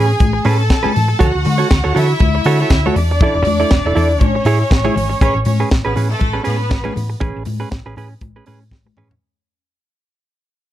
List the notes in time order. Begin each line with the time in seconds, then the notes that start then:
Already playing: A2 C#4 G#4 G#5
0.08 muted clean electric guitar stroke
0.20 A1, kick, closed hi-hat, muted conga, high conga
0.33 muted clean electric guitar stroke
0.45 A2 C#4 G#4 A4 B4 A5, open hi-hat, muted conga
0.60 muted clean electric guitar stroke
0.70 A1, muted clean electric guitar stroke, kick, snare, closed hi-hat
0.83 C#4 G#4 B4, high conga
0.94 A2, muted clean electric guitar stroke, open hi-hat, low conga
1.08 muted clean electric guitar stroke
1.19 D2 F#4 A4 C#5 F#5, kick, closed hi-hat, low conga
1.34 D2, muted clean electric guitar stroke
1.45 D3, muted clean electric guitar stroke, open hi-hat, high conga
1.58 F#4 A4 C#5
1.70 D2, muted clean electric guitar stroke, kick, snare, closed hi-hat
1.84 D2 F#4 A4 C#5
1.95 D3 E4 F#4 A4 C#5 E5, open hi-hat, low conga
2.10 muted clean electric guitar stroke
2.20 D2, muted clean electric guitar stroke, kick, closed hi-hat, high conga
2.35 muted clean electric guitar stroke
2.44 D3 F#4 A4 C#5, open hi-hat
2.60 F#4 A4 C#5
2.70 D2, muted clean electric guitar stroke, kick, snare, closed hi-hat
2.86 F#4 A4 C#5, high conga
2.96 E2 D4 D5, muted clean electric guitar stroke, open hi-hat, muted conga, low conga
3.11 muted clean electric guitar stroke
3.21 E4 A4 D5, kick, closed hi-hat, low conga
3.35 E1, muted clean electric guitar stroke
3.45 E2, muted clean electric guitar stroke, open hi-hat, muted conga, high conga
3.60 E4 A4 D5
3.71 E1, muted clean electric guitar stroke, kick, snare, closed hi-hat
3.85 E1 E4 A4 D5
3.95 E2 E4 A4 D5, open hi-hat, muted conga, low conga
4.10 muted clean electric guitar stroke
4.20 A1 C#4 C#5, kick, closed hi-hat, muted conga, high conga
4.35 muted clean electric guitar stroke
4.45 A2 E4 G#4 C#5, open hi-hat, muted conga
4.61 muted clean electric guitar stroke
4.70 A1, muted clean electric guitar stroke, kick, snare, closed hi-hat, muted conga
4.85 E4 G#4 C#5, high conga
4.96 G#1, muted clean electric guitar stroke, open hi-hat, low conga
5.10 muted clean electric guitar stroke
5.21 A1 C#4 G#4 B4 C#5, kick, closed hi-hat, muted conga, low conga
5.35 A1, muted clean electric guitar stroke
5.45 A2 C#4 C#5, muted clean electric guitar stroke, open hi-hat, muted conga, high conga
5.60 C#4 G#4 B4
5.71 A1, muted clean electric guitar stroke, kick, snare, closed hi-hat, muted conga
5.85 A1 B3 C#4 G#4 B4
5.96 A2 C#4 G#4 B4, open hi-hat, muted conga, low conga
6.09 A3 A4, muted clean electric guitar stroke
6.19 A1, muted clean electric guitar stroke, kick, closed hi-hat, muted conga, high conga
6.33 C#4 G#4 B4
6.43 A2 B3 C#4 G#4 B4, open hi-hat, muted conga, high conga
6.58 muted clean electric guitar stroke
6.69 A1, muted clean electric guitar stroke, kick, snare, closed hi-hat
6.84 C#4 G#4 B4, high conga
6.95 A2, muted clean electric guitar stroke, open hi-hat, muted conga, low conga
7.10 muted clean electric guitar stroke
7.20 A1 C#4 G#4 B4, kick, closed hi-hat, muted conga, low conga
7.36 A1
7.45 A2, muted clean electric guitar stroke, open hi-hat, muted conga, high conga
7.60 C#4 G#4 B4
7.71 A1, muted clean electric guitar stroke, kick, snare, closed hi-hat
7.86 A1 C#4 G#4 B4
7.96 A2 C#4 G#4 B4, open hi-hat, low conga
8.11 muted clean electric guitar stroke
8.21 A1, muted clean electric guitar stroke, kick, closed hi-hat, high conga
8.36 C#4 G#4 B4
8.46 A2 C#4 G#4 B4, open hi-hat, muted conga, high conga
8.62 muted clean electric guitar stroke
8.71 A1, muted clean electric guitar stroke, kick, snare, muted conga
8.86 muted clean electric guitar stroke, high conga
8.97 A2 C#4 G#4 B4, mid tom, low conga
9.10 muted clean electric guitar stroke, floor tom